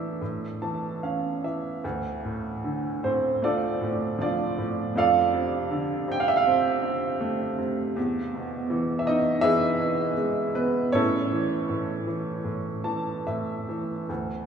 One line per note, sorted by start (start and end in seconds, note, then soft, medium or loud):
0.00 0.17 A2 medium
0.00 0.22 E3 soft
0.00 0.19 D4 soft
0.00 0.23 E4 medium
0.00 0.22 A4 medium
0.00 0.23 E5 medium
0.21 1.80 A2 soft
0.62 1.42 E3 soft
0.62 1.00 A5 soft
1.03 1.82 C#4 soft
1.03 1.41 F5 soft
1.44 1.83 E3 soft
1.44 1.81 E5 soft
1.84 4.93 D2 medium
2.25 3.02 A2 soft
2.64 4.17 D3 soft
3.04 3.79 A2 soft
3.04 3.42 C4 soft
3.04 3.45 C5 medium
3.42 4.92 A3 soft
3.42 4.17 D4 soft
3.42 4.17 F4 medium
3.42 4.17 A4 soft
3.42 4.20 D5 medium
3.81 4.56 A2 soft
4.19 4.93 F3 soft
4.19 4.93 D4 medium
4.19 4.93 F4 medium
4.19 4.96 D5 medium
4.58 4.95 A2 soft
4.95 7.92 F2 medium
4.95 6.08 F4 medium
4.95 6.08 A4 medium
4.95 6.09 D5 medium
4.95 6.09 F5 medium
5.33 6.07 C3 soft
5.71 7.16 D3 medium
6.08 6.81 C3 medium
6.08 6.20 G5 medium
6.20 6.29 F5 medium
6.28 6.37 E5 medium
6.37 6.46 F5 medium
6.46 7.93 C4 medium
6.82 7.57 C3 soft
7.21 7.94 A3 medium
7.58 7.95 C3 soft
7.96 10.89 E2 medium
8.35 9.04 B2 soft
8.70 9.40 E3 medium
8.99 9.06 E5 medium
9.06 9.77 B2 soft
9.06 9.42 D#4 medium
9.06 9.41 D#5 medium
9.41 10.89 E3 medium
9.41 10.14 E4 medium
9.41 10.14 G#4 medium
9.41 10.14 B4 medium
9.41 10.13 E5 loud
9.79 10.52 B2 soft
10.17 10.91 G#3 soft
10.54 10.92 B2 soft
10.54 10.92 B3 medium
10.54 10.91 B4 medium
10.92 11.68 A2 medium
10.92 13.24 C#4 medium
10.92 13.24 E4 medium
10.92 13.24 A4 medium
10.92 13.22 C#5 medium
11.32 12.06 E3 soft
11.70 12.43 A2 soft
12.07 12.83 E3 soft
12.44 13.25 A2 soft
12.84 13.67 E3 soft
12.84 13.24 A5 medium
13.27 14.07 A2 soft
13.27 14.05 E5 soft
13.69 14.08 E3 soft
14.09 14.46 D2 soft